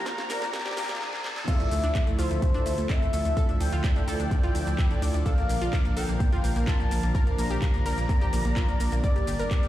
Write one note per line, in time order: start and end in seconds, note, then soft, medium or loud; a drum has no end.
0.00 0.97 D3 medium
0.00 0.27 F3 medium
0.00 0.97 F3 medium
0.00 0.97 A#3 medium
0.00 0.27 D4 medium
0.00 0.97 F4 medium
0.00 0.27 A#4 medium
0.00 0.27 F5 medium
0.00 0.99 A#5 medium
0.00 1.01 A#5 loud
0.00 riser medium
0.06 0.13 A#3 medium
0.06 kick loud
0.06 snare medium
0.06 closed hi-hat medium
0.06 shaker soft
0.18 0.24 A#3 medium
0.18 snare medium
0.18 closed hi-hat soft
0.18 shaker soft
0.30 1.45 F3 medium
0.30 1.45 D4 medium
0.30 1.45 A#4 medium
0.30 0.36 A#4 loud
0.30 1.45 D5 medium
0.30 snare medium
0.30 open hi-hat loud
0.30 shaker medium
0.42 0.49 A#1 medium
0.42 0.48 A#3 medium
0.42 snare medium
0.42 closed hi-hat soft
0.42 shaker soft
0.53 0.60 A#3 medium
0.53 kick loud
0.53 snare loud
0.53 closed hi-hat medium
0.53 shaker soft
0.59 snare medium
0.65 0.72 G4 medium
0.65 snare medium
0.65 closed hi-hat soft
0.65 shaker soft
0.71 snare medium
0.77 0.85 A#1 loud
0.77 0.84 A#3 medium
0.77 snare loud
0.77 open hi-hat loud
0.77 shaker medium
0.83 snare medium
0.89 0.96 A#1 medium
0.89 0.95 A#3 medium
0.89 snare medium
0.89 closed hi-hat medium
0.89 shaker soft
0.95 snare loud
1.01 snare medium
1.13 snare medium
1.24 snare medium
1.36 snare medium
1.48 9.68 D3 medium
1.48 9.00 F3 medium
1.48 2.16 F3 medium
1.48 5.22 A3 medium
1.48 2.16 E4 medium
1.48 3.35 E4 medium
1.48 1.54 F4 loud
1.48 2.16 A4 medium
1.48 5.22 A4 medium
1.48 2.16 D5 medium
1.48 2.09 E5 loud
1.48 kick loud
1.48 closed hi-hat medium
1.48 crash loud
1.48 shaker soft
1.60 1.66 A3 medium
1.60 closed hi-hat soft
1.60 shaker soft
1.71 1.79 D2 loud
1.71 1.78 A3 medium
1.71 open hi-hat loud
1.71 shaker medium
1.83 1.91 D2 medium
1.83 1.90 D4 medium
1.83 closed hi-hat medium
1.83 shaker soft
1.95 2.02 A3 medium
1.95 kick loud
1.95 clap loud
1.95 closed hi-hat medium
1.95 shaker soft
2.07 2.13 A3 medium
2.07 closed hi-hat soft
2.07 shaker soft
2.19 2.26 D2 medium
2.19 3.34 F3 medium
2.19 3.34 E4 medium
2.19 2.25 F4 loud
2.19 3.34 A4 medium
2.19 2.91 C5 loud
2.19 3.34 E5 medium
2.19 open hi-hat loud
2.19 shaker medium
2.31 2.38 D2 medium
2.31 2.37 A3 medium
2.31 closed hi-hat medium
2.31 shaker soft
2.42 2.49 A3 medium
2.42 kick loud
2.42 closed hi-hat medium
2.42 shaker soft
2.54 2.61 D4 loud
2.54 closed hi-hat soft
2.54 shaker soft
2.66 2.73 D2 loud
2.66 2.73 A3 medium
2.66 open hi-hat loud
2.66 shaker medium
2.78 2.85 D2 medium
2.78 2.84 A3 medium
2.78 closed hi-hat medium
2.78 shaker soft
2.90 2.96 C4 medium
2.90 3.51 E5 loud
2.90 kick loud
2.90 clap loud
2.90 closed hi-hat medium
2.90 shaker soft
3.02 3.08 A3 medium
3.02 shaker soft
3.13 3.21 D2 medium
3.13 3.20 A3 medium
3.13 open hi-hat loud
3.13 shaker medium
3.25 3.32 D2 medium
3.25 3.32 A3 medium
3.25 closed hi-hat medium
3.25 shaker soft
3.37 4.05 F3 medium
3.37 4.05 E4 medium
3.37 4.05 A4 medium
3.37 3.43 A4 loud
3.37 4.05 E5 medium
3.37 kick loud
3.37 closed hi-hat medium
3.37 shaker soft
3.49 3.55 D4 medium
3.49 closed hi-hat soft
3.49 shaker soft
3.60 3.68 D2 medium
3.60 3.67 D4 medium
3.60 5.17 G5 loud
3.60 open hi-hat loud
3.60 shaker medium
3.72 3.80 D2 medium
3.72 3.79 F4 medium
3.72 closed hi-hat medium
3.72 shaker soft
3.84 3.91 D4 medium
3.84 kick loud
3.84 clap loud
3.84 closed hi-hat medium
3.84 shaker soft
3.96 4.02 D4 medium
3.96 closed hi-hat soft
3.96 shaker soft
4.08 4.15 D2 loud
4.08 5.23 F3 medium
4.08 5.23 E4 medium
4.08 4.14 A4 loud
4.08 5.23 A4 medium
4.08 5.23 D5 medium
4.08 open hi-hat loud
4.08 shaker medium
4.20 4.27 D2 medium
4.20 4.26 D4 medium
4.20 closed hi-hat medium
4.20 shaker soft
4.31 4.38 D4 medium
4.31 kick loud
4.31 clap soft
4.31 closed hi-hat medium
4.31 shaker soft
4.43 4.50 F4 loud
4.43 closed hi-hat soft
4.43 shaker soft
4.55 4.62 D2 loud
4.55 4.61 D4 medium
4.55 open hi-hat loud
4.55 shaker medium
4.67 4.74 D2 medium
4.67 4.73 D4 medium
4.67 closed hi-hat medium
4.67 shaker soft
4.79 4.85 E4 medium
4.79 kick loud
4.79 clap loud
4.79 closed hi-hat medium
4.79 shaker soft
4.91 4.97 D4 medium
4.91 closed hi-hat soft
4.91 shaker soft
5.02 5.10 D2 medium
5.02 5.09 D4 medium
5.02 open hi-hat loud
5.02 shaker medium
5.14 5.21 D2 medium
5.14 5.21 D4 medium
5.14 closed hi-hat medium
5.14 shaker soft
5.26 5.94 F3 medium
5.26 9.68 A#3 medium
5.26 5.94 D4 medium
5.26 5.32 A4 loud
5.26 5.94 A#4 medium
5.26 7.13 A#4 medium
5.26 5.94 D5 medium
5.26 5.98 F5 loud
5.26 kick loud
5.26 closed hi-hat medium
5.26 shaker soft
5.38 5.44 A#3 medium
5.38 closed hi-hat soft
5.38 shaker soft
5.49 5.57 A#1 medium
5.49 5.56 A#3 medium
5.49 open hi-hat loud
5.49 shaker medium
5.61 5.69 A#1 medium
5.61 5.68 F4 medium
5.61 closed hi-hat soft
5.61 shaker soft
5.73 5.80 A#3 medium
5.73 kick loud
5.73 clap loud
5.73 closed hi-hat medium
5.73 shaker soft
5.85 5.91 A#3 medium
5.85 closed hi-hat soft
5.85 shaker soft
5.97 6.04 A#1 medium
5.97 7.12 F3 medium
5.97 7.12 D4 medium
5.97 6.03 A4 loud
5.97 7.12 A#4 medium
5.97 7.12 F5 medium
5.97 6.58 G5 loud
5.97 open hi-hat loud
5.97 shaker medium
6.09 6.16 A#1 medium
6.09 6.15 A#3 medium
6.09 closed hi-hat medium
6.09 shaker soft
6.20 6.27 A#3 medium
6.20 kick loud
6.20 closed hi-hat medium
6.20 shaker soft
6.32 6.39 F4 loud
6.32 closed hi-hat soft
6.32 shaker soft
6.44 6.51 A#1 medium
6.44 6.50 A#3 medium
6.44 open hi-hat loud
6.44 shaker medium
6.56 6.63 A#1 medium
6.56 6.62 A#3 medium
6.56 closed hi-hat medium
6.56 shaker soft
6.67 6.74 F4 loud
6.67 7.29 A5 loud
6.67 kick loud
6.67 clap loud
6.67 closed hi-hat medium
6.67 shaker soft
6.80 6.86 A#3 medium
6.80 shaker soft
6.91 6.99 A#1 medium
6.91 6.98 A#3 medium
6.91 open hi-hat loud
6.91 shaker medium
7.03 7.10 A#1 medium
7.03 7.10 A#3 medium
7.03 closed hi-hat medium
7.03 shaker soft
7.15 7.83 F3 medium
7.15 7.83 D4 medium
7.15 7.83 A#4 medium
7.15 7.21 A#4 loud
7.15 7.83 F5 medium
7.15 9.02 A#5 medium
7.15 kick loud
7.15 closed hi-hat medium
7.15 shaker soft
7.27 7.33 A#3 medium
7.27 closed hi-hat soft
7.27 shaker soft
7.38 7.46 A#1 medium
7.38 7.45 A#3 medium
7.38 8.95 A#5 loud
7.38 open hi-hat loud
7.38 shaker medium
7.50 7.58 A#1 medium
7.50 7.57 G4 loud
7.50 closed hi-hat soft
7.50 shaker soft
7.62 7.69 A#3 medium
7.62 kick loud
7.62 clap loud
7.62 closed hi-hat medium
7.62 shaker soft
7.74 7.80 A#3 medium
7.74 closed hi-hat soft
7.74 shaker soft
7.86 7.93 A#1 loud
7.86 9.01 F3 medium
7.86 9.01 D4 medium
7.86 9.01 A#4 medium
7.86 7.92 A#4 loud
7.86 9.01 D5 medium
7.86 open hi-hat loud
7.86 shaker medium
7.98 8.05 A#1 medium
7.98 8.04 A#3 medium
7.98 closed hi-hat soft
7.98 shaker soft
8.09 8.16 A#3 medium
8.09 kick loud
8.09 clap soft
8.09 closed hi-hat medium
8.09 shaker soft
8.21 8.28 G4 loud
8.21 closed hi-hat soft
8.21 shaker soft
8.33 8.40 A#1 loud
8.33 8.39 A#3 medium
8.33 open hi-hat loud
8.33 shaker medium
8.45 8.52 A#1 medium
8.45 8.51 A#3 medium
8.45 closed hi-hat medium
8.45 shaker soft
8.56 8.63 F4 medium
8.56 kick loud
8.56 clap loud
8.56 closed hi-hat medium
8.56 shaker soft
8.69 8.75 A#3 medium
8.69 closed hi-hat soft
8.69 shaker soft
8.80 8.88 A#1 medium
8.80 8.87 A#3 medium
8.80 open hi-hat loud
8.80 shaker medium
8.92 8.99 A#1 medium
8.92 8.98 A#3 medium
8.92 closed hi-hat medium
8.92 shaker soft
9.04 9.68 G3 medium
9.04 9.68 D4 medium
9.04 9.68 G4 medium
9.04 9.68 A#4 medium
9.04 9.68 D5 medium
9.04 9.68 D5 loud
9.04 9.10 D5 loud
9.04 kick loud
9.04 closed hi-hat medium
9.04 shaker soft
9.16 9.22 G4 medium
9.16 closed hi-hat soft
9.16 shaker soft
9.27 9.35 G1 medium
9.27 9.34 G4 medium
9.27 open hi-hat loud
9.27 shaker medium
9.39 9.47 G1 medium
9.39 9.46 A#4 loud
9.39 closed hi-hat medium
9.39 shaker soft
9.51 9.58 G4 medium
9.51 kick loud
9.51 clap loud
9.51 closed hi-hat medium
9.51 shaker soft
9.63 9.68 G4 medium
9.63 closed hi-hat soft
9.63 shaker soft